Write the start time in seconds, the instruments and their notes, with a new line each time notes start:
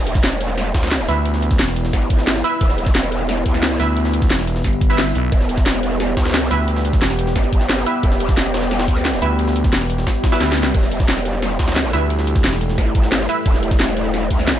Already playing: wobble bass E1, ambient pad G3 B3 E4
0.07 closed hi-hat, ride
0.15 kick, snare
0.24 snare, closed hi-hat, ride
0.32 snare, ride
0.41 closed hi-hat, ride
0.58 snare, closed hi-hat, ride
0.74 wobble bass D2, kick, snare, closed hi-hat, ride
0.83 snare, ride
0.87 snare, ride
0.91 snare, closed hi-hat, ride
1.08 fm bass D2, synth stab E4 B4 E5, snare, closed hi-hat, ride
1.25 closed hi-hat, ride
1.34 snare
1.42 closed hi-hat, ride
1.51 kick, snare
1.59 fm bass E1, snare, closed hi-hat, ride
1.68 snare
1.76 closed hi-hat, ride
1.85 snare
1.93 wobble bass G1, kick, snare, closed hi-hat, ride
2.02 ride
2.10 kick, closed hi-hat, ride
2.19 snare
2.27 snare, closed hi-hat, ride
2.44 synth stab E4 B4 E5, closed hi-hat, ride
2.61 wobble bass E1, kick, closed hi-hat, ride
2.70 snare
2.78 closed hi-hat, ride
2.86 kick, snare
2.95 snare, closed hi-hat, ride
3.03 snare, ride
3.12 closed hi-hat, ride
3.29 snare, closed hi-hat, ride
3.46 wobble bass D2, kick, closed hi-hat, ride
3.54 snare
3.63 snare, closed hi-hat, ride
3.80 fm bass D2, synth stab E4 B4 E5, snare, closed hi-hat, ride
3.97 closed hi-hat, ride
4.05 snare
4.13 closed hi-hat, ride
4.22 kick, snare
4.30 fm bass E1, snare, closed hi-hat, ride
4.39 snare
4.47 closed hi-hat, ride
4.56 snare
4.64 fm bass G1, kick, snare, closed hi-hat, ride
4.73 ride
4.81 kick, closed hi-hat, ride
4.90 synth stab E4 B4 E5, snare
4.98 snare, closed hi-hat, ride
5.15 fm bass B1, closed hi-hat, ride
5.32 wobble bass E1, ambient pad G4, kick, closed hi-hat, ride
5.41 snare
5.49 closed hi-hat, ride
5.58 kick, snare
5.66 snare, closed hi-hat, ride
5.75 snare, ride
5.83 closed hi-hat, ride
6.00 snare, closed hi-hat, ride
6.17 wobble bass D2, kick, snare, closed hi-hat, ride
6.25 snare, ride
6.30 snare, ride
6.34 snare, closed hi-hat, ride
6.51 fm bass D2, synth stab E4 B4 E5, snare, closed hi-hat, ride
6.68 closed hi-hat, ride
6.76 snare
6.85 closed hi-hat, ride
6.93 kick, snare
7.02 fm bass E1, snare, closed hi-hat, ride
7.10 snare
7.19 closed hi-hat, ride
7.27 snare
7.36 wobble bass G1, kick, snare, closed hi-hat, ride
7.44 ride
7.53 kick, closed hi-hat, ride
7.61 snare
7.69 snare, closed hi-hat, ride
7.86 synth stab E4 B4 E5, closed hi-hat, ride
8.03 wobble bass E1, kick, closed hi-hat, ride
8.12 snare
8.20 closed hi-hat, ride
8.29 kick, snare
8.37 snare, closed hi-hat, ride
8.46 snare, ride
8.54 snare, closed hi-hat, ride
8.63 snare
8.71 snare, closed hi-hat, ride
8.80 snare, ride
8.88 wobble bass D2, kick, snare, closed hi-hat
8.97 snare, ride
9.05 snare, closed hi-hat, ride
9.14 snare
9.22 fm bass D2, synth stab E4 B4 E5, closed hi-hat, ride
9.39 closed hi-hat, ride
9.47 snare
9.56 closed hi-hat, ride
9.64 kick, snare
9.73 fm bass E1, snare, closed hi-hat, ride
9.81 snare
9.90 closed hi-hat, ride
9.98 snare
10.07 kick, snare, closed hi-hat, ride, swell
10.15 ride
10.24 kick, snare, closed hi-hat, ride
10.32 synth stab E4 B4 E5, snare, ride
10.41 fm bass D2, snare, closed hi-hat, ride
10.49 snare, ride
10.58 closed hi-hat, ride
10.63 snare
10.74 wobble bass E1, ambient pad A3 E4, kick, closed hi-hat, ride, crash
10.83 snare
10.91 closed hi-hat, ride
11.00 kick, snare
11.08 snare, closed hi-hat, ride
11.17 snare, ride
11.25 closed hi-hat, ride
11.42 snare, closed hi-hat, ride
11.59 wobble bass D2, kick, snare, closed hi-hat, ride
11.68 snare, ride
11.72 snare, ride
11.76 snare, closed hi-hat, ride
11.93 fm bass D2, synth stab E4 B4 E5, snare, closed hi-hat, ride
12.10 closed hi-hat, ride
12.19 snare
12.27 closed hi-hat, ride
12.36 kick, snare
12.44 fm bass E1, snare, closed hi-hat, ride
12.53 snare
12.61 closed hi-hat, ride
12.70 snare
12.78 wobble bass G1, kick, snare, closed hi-hat, ride
12.87 ride
12.95 kick, closed hi-hat, ride
13.03 snare
13.12 snare, closed hi-hat, ride
13.29 synth stab E4 B4 E5, closed hi-hat, ride
13.46 wobble bass E1, kick, closed hi-hat, ride
13.54 snare
13.63 closed hi-hat, ride
13.71 kick, snare
13.80 snare, closed hi-hat, ride
13.88 snare, ride
13.97 closed hi-hat, ride
14.14 snare, closed hi-hat, ride
14.30 wobble bass D2, kick, closed hi-hat, ride
14.39 snare
14.47 snare, closed hi-hat, ride